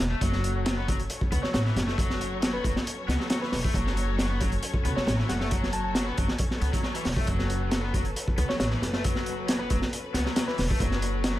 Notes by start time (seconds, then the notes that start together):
0.00 E1
0.11 A3
0.21 F#1 F#3 C#4 A4 C#5, kick, closed hi-hat
0.33 snare
0.44 closed hi-hat
0.65 F#3, snare, closed hi-hat
0.77 B3
0.88 F#3, kick, closed hi-hat
0.99 closed hi-hat
1.10 closed hi-hat
1.21 kick
1.32 C#2 B3, closed hi-hat
1.43 F#3 C#5, muted upright bass stroke, snare
1.54 A1 F#3 C#5, snare, closed hi-hat
1.65 E3, snare
1.76 F#1, snare, closed hi-hat
1.88 A3, snare
1.98 F#3, kick, closed hi-hat
2.10 snare
2.21 closed hi-hat
2.42 F#3, snare, closed hi-hat
2.53 B3 B4
2.64 F#1 F#3, kick, closed hi-hat
2.76 snare
2.87 closed hi-hat
3.08 C#2 B3, snare, closed hi-hat
3.20 F#3, snare
3.30 F#3, snare, closed hi-hat
3.42 E3 B4, snare
3.52 E1 B4, snare, open hi-hat
3.64 A3, kick
3.74 F#1 F#3, kick, closed hi-hat
3.87 snare
3.97 closed hi-hat
4.19 F#3, snare, closed hi-hat
4.30 B3
4.41 F#3, kick, closed hi-hat
4.52 closed hi-hat
4.63 closed hi-hat
4.74 kick
4.85 C#2 B3, closed hi-hat
4.96 F#3 C#5, muted upright bass stroke, snare
5.06 A1 F#3 C#5, snare, closed hi-hat
5.18 E3, snare
5.29 F#1 F#5, snare, closed hi-hat
5.40 A3, snare
5.51 F#3, kick, closed hi-hat
5.63 snare
5.73 A5, closed hi-hat
5.84 A5
5.95 F#3, snare, closed hi-hat
6.06 B3
6.17 F#1 F#3, kick, closed hi-hat
6.28 snare
6.38 kick, closed hi-hat
6.51 snare
6.61 C#2 B3, closed hi-hat
6.73 F#3, kick, closed hi-hat
6.83 F#3, snare
6.94 E3, closed hi-hat
7.05 E1, snare, open hi-hat
7.16 A3, kick
7.27 F#1 F#3 B4, kick, closed hi-hat
7.39 snare
7.50 closed hi-hat
7.71 F#3, snare, closed hi-hat
7.83 B3
7.93 F#3, kick, closed hi-hat
8.05 closed hi-hat
8.16 closed hi-hat
8.28 kick
8.38 C#2 B3, closed hi-hat
8.49 F#3 C#5, muted upright bass stroke, snare
8.60 A1 F#3 C#5, snare, closed hi-hat
8.71 E3, snare
8.82 F#1, snare, closed hi-hat
8.93 A3, snare
9.04 F#3, kick, closed hi-hat
9.15 snare
9.26 closed hi-hat
9.48 F#3, snare, closed hi-hat
9.59 B3 B4
9.70 F#1 F#3, kick, closed hi-hat
9.82 snare
9.93 closed hi-hat
10.14 C#2 B3, snare, closed hi-hat
10.26 F#3, snare
10.36 F#3, snare, closed hi-hat
10.48 E3 B4, snare
10.58 E1 B4, snare, open hi-hat
10.70 A3, kick
10.80 F#1 F#3, kick, closed hi-hat
10.91 snare
11.02 closed hi-hat
11.24 F#3, snare, closed hi-hat
11.36 B3